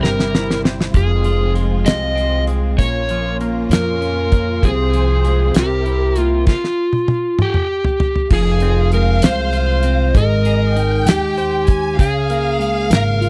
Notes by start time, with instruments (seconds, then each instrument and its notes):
Already playing: clean electric guitar C3 C4, string section G3 C4 E4
0.01 upright bass G1, clean electric guitar G3, electric slide guitar A#4, snare
0.20 snare
0.34 clean electric guitar E4, snare
0.51 snare
0.64 clean electric guitar C4, snare
0.81 snare
0.93 upright bass F1, clean electric guitar F2, string section G#3 C4 F4, electric slide guitar G#4, kick, closed hi-hat
1.24 clean electric guitar F3, closed hi-hat
1.55 clean electric guitar G#3, closed hi-hat
1.85 upright bass C2, clean electric guitar C3, electric slide guitar D#5, snare, closed hi-hat
2.16 clean electric guitar C4, closed hi-hat
2.47 clean electric guitar G#3, closed hi-hat
2.78 upright bass A#1, clean electric guitar A#2, string section A#3 C#4 F4, electric slide guitar C#5, kick, closed hi-hat
3.09 clean electric guitar F3, closed hi-hat
3.41 clean electric guitar A#3, closed hi-hat
3.69 upright bass F2, clean electric guitar F3, snare, closed hi-hat
3.73 electric slide guitar A#4
4.01 clean electric guitar C#4, closed hi-hat
4.32 clean electric guitar A#3, kick, closed hi-hat
4.62 upright bass C2, clean electric guitar C3, string section C3 C4 G#4 C5, electric slide guitar G#4, kick, closed hi-hat
4.93 clean electric guitar F3, closed hi-hat
5.25 clean electric guitar G#3, closed hi-hat
5.54 upright bass C2, clean electric guitar C3, string section C4 E4 G4 A#4, snare, closed hi-hat
5.58 electric slide guitar G4
5.86 clean electric guitar E4, closed hi-hat
6.16 clean electric guitar A#3, electric slide guitar F4, closed hi-hat
6.46 electric slide guitar F4, kick, snare, crash
6.64 snare
6.93 high tom
7.08 high tom
7.39 electric slide guitar G4, mid tom
7.54 mid tom
7.84 floor tom
8.00 floor tom
8.16 floor tom
8.30 upright bass F1, clean electric guitar F3, electric slide guitar G#4, violin section F5, kick, crash
8.60 clean electric guitar C4, closed hi-hat
8.92 clean electric guitar G#3, electric slide guitar A#4, closed hi-hat
9.22 upright bass C2, clean electric guitar C4, electric slide guitar C5, snare, closed hi-hat
9.53 clean electric guitar F4, closed hi-hat
9.83 clean electric guitar C4, closed hi-hat
10.15 upright bass G#1, clean electric guitar G#3, electric slide guitar A#4, violin section D#5, kick, closed hi-hat
10.45 clean electric guitar G#4, closed hi-hat
10.75 clean electric guitar D#4, violin section G5, closed hi-hat
11.06 upright bass D#2, electric slide guitar G4, snare, closed hi-hat
11.38 clean electric guitar C5, closed hi-hat
11.67 violin section G#5, kick, closed hi-hat
11.99 upright bass C#2, clean electric guitar C#3, electric slide guitar G#4, violin section F5, kick, closed hi-hat
12.30 clean electric guitar A#3, closed hi-hat
12.59 clean electric guitar G#3, closed hi-hat
12.90 upright bass G#1, clean electric guitar A#3, electric slide guitar A#4, snare, closed hi-hat
13.21 clean electric guitar F4, closed hi-hat